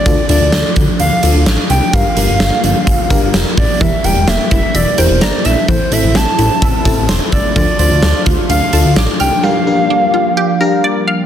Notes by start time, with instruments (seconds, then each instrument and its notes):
Already playing: analog synth pad A3, soft synth lead D5
0.06 analog synth bass D2, analog synth pad F3 D4, fm electric piano D4 F4 A4, kick, closed hi-hat
0.29 analog synth bass D2, fm electric piano D4 F4 A4, soft synth lead D5, closed hi-hat
0.41 analog synth bass D2
0.52 analog synth bass D2, snare, closed hi-hat
0.76 analog synth bass D2, kick, closed hi-hat
1.00 analog synth bass D2, soft synth lead F5, closed hi-hat
1.23 analog synth bass D2, fm electric piano D4 F4 A4, closed hi-hat
1.35 analog synth bass D2
1.46 analog synth bass A1, snare, closed hi-hat
1.70 analog synth bass C2, soft synth lead G5, closed hi-hat
1.93 analog synth bass G1, analog synth pad D3 F3 G3 A#3 F4, fm electric piano D4 G4 A#4, soft synth lead F5, kick, closed hi-hat
2.17 analog synth bass G1, fm electric piano D4 G4 A#4, closed hi-hat
2.29 analog synth bass G1
2.40 analog synth bass G1, snare, closed hi-hat
2.64 analog synth bass G1, closed hi-hat
2.87 analog synth bass G1, kick, closed hi-hat
3.10 analog synth bass G1, fm electric piano D4 G4 A#4, kick, closed hi-hat
3.22 analog synth bass G1
3.34 analog synth bass F1, snare, closed hi-hat
3.57 analog synth bass A1, soft synth lead D5, kick, open hi-hat
3.81 analog synth bass E1, synth arpeggio sound E3, fm electric piano E4 G4 A#4, analog synth pad E4, soft synth lead E5, kick, closed hi-hat
4.04 analog synth bass E1, fm electric piano E4 G4 A#4, soft synth lead G5, closed hi-hat
4.16 analog synth bass E1
4.28 analog synth bass E1, synth arpeggio sound A#3, soft synth lead E5, snare, closed hi-hat
4.51 analog synth bass E1, synth arpeggio sound E4, soft synth lead E5, kick, closed hi-hat
4.75 analog synth bass E1, soft synth lead D5, synth arpeggio sound E5, closed hi-hat
4.98 analog synth bass E1, fm electric piano E4 G4 A#4, soft synth lead C5, synth arpeggio sound G5, closed hi-hat
5.10 analog synth bass E1
5.21 analog synth bass G1, soft synth lead D5, synth arpeggio sound A#5, snare, closed hi-hat
5.45 analog synth bass A#1, soft synth lead E5, synth arpeggio sound E6, closed hi-hat
5.68 analog synth bass A1, synth arpeggio sound E3, analog synth pad A3 C4, fm electric piano C4 E4 A4, soft synth lead C5, kick, closed hi-hat
5.92 analog synth bass A1, fm electric piano C4 E4 A4, soft synth lead E5, closed hi-hat
6.04 analog synth bass A1
6.15 analog synth bass A1, synth arpeggio sound C4, soft synth lead A5, snare, closed hi-hat
6.39 analog synth bass A1, synth arpeggio sound E4, closed hi-hat
6.62 analog synth bass A1, synth arpeggio sound E5, kick, closed hi-hat
6.85 analog synth bass A1, fm electric piano C4 E4 A4, synth arpeggio sound A5, kick, closed hi-hat
6.97 analog synth bass A1
7.09 analog synth bass E1, synth arpeggio sound C6, snare, closed hi-hat
7.32 analog synth bass G1, soft synth lead D5, synth arpeggio sound E6, kick, closed hi-hat
7.56 analog synth bass D2, synth arpeggio sound F3, fm electric piano D4 F4 A4, analog synth pad D4 F4, soft synth lead D5, kick, closed hi-hat
7.79 analog synth bass D2, fm electric piano D4 F4 C5, soft synth lead D5, closed hi-hat
7.91 analog synth bass D2
8.03 analog synth bass D2, synth arpeggio sound D4, snare, closed hi-hat
8.26 analog synth bass D2, synth arpeggio sound F4, kick, closed hi-hat
8.50 analog synth bass D2, synth arpeggio sound F5, soft synth lead F5, closed hi-hat
8.73 analog synth bass D2, fm electric piano D4 F4 A4, synth arpeggio sound A5, closed hi-hat
8.85 analog synth bass D2
8.96 analog synth bass A1, synth arpeggio sound D6, snare, closed hi-hat
9.20 analog synth bass C2, soft synth lead G5, synth arpeggio sound F6, closed hi-hat
9.43 analog synth pad F3 G3 A#3 G4, synth arpeggio sound G3, fm electric piano D4 G4 A#4, soft synth lead F5
9.67 fm electric piano D4 G4 A#4
9.90 synth arpeggio sound D4
10.14 synth arpeggio sound F4
10.37 synth arpeggio sound G4
10.61 fm electric piano D4 G4 A#4, synth arpeggio sound A#4
10.84 synth arpeggio sound D5
11.07 synth arpeggio sound F5